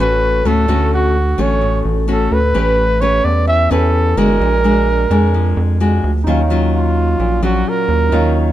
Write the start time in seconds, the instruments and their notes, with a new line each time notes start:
Already playing: nylon-string guitar A2
0.00 analog synth bass A1, nylon-string guitar A3 C#4 F#4, flugelhorn B4
0.45 analog synth bass D2, nylon-string guitar A3 C#4 F#4, flugelhorn A4
0.68 analog synth bass D2, nylon-string guitar D3 A3 C#4 F#4
0.94 flugelhorn F#4
1.38 analog synth bass A1, nylon-string guitar A3 C#4 F#4, flugelhorn C#5
1.61 nylon-string guitar A2
1.85 analog synth bass A1
2.08 nylon-string guitar A3 C#4 F#4, flugelhorn A4
2.31 analog synth bass D2, flugelhorn B4
2.54 analog synth bass A1, nylon-string guitar A3 C#4 G4 B4
3.01 nylon-string guitar C#4 G4 B4, flugelhorn C#5
3.24 analog synth bass E2, flugelhorn D5
3.47 nylon-string guitar E3, flugelhorn E5
3.71 analog synth bass E2, nylon-string guitar C#4 G4 B4, flugelhorn A4
4.17 analog synth bass G1, nylon-string guitar G#3 D4 F#4, flugelhorn A#4
4.40 analog synth bass A#1, nylon-string guitar A#2
4.64 nylon-string guitar G#3 D4 F#4
5.10 analog synth bass F2, nylon-string guitar G#3 D4
5.34 nylon-string guitar F3
5.57 analog synth bass F2
5.80 nylon-string guitar G#3 D4 F#4
6.04 analog synth bass D2
6.24 analog synth bass D#2, nylon-string guitar D#3 F#3 C#4 F4, grand piano D#4 C#5
6.30 grand piano F5
6.50 nylon-string guitar F#3 C#4 F4
6.76 flugelhorn F4
7.19 analog synth bass A#1, nylon-string guitar A#2
7.42 analog synth bass A#1, nylon-string guitar F#3 C#4 F4, flugelhorn F#4
7.69 flugelhorn A#4
7.88 analog synth bass D#2
8.09 analog synth bass D#2, nylon-string guitar D#3 F#3 C#4 F4, grand piano D#4
8.13 grand piano C#5 F5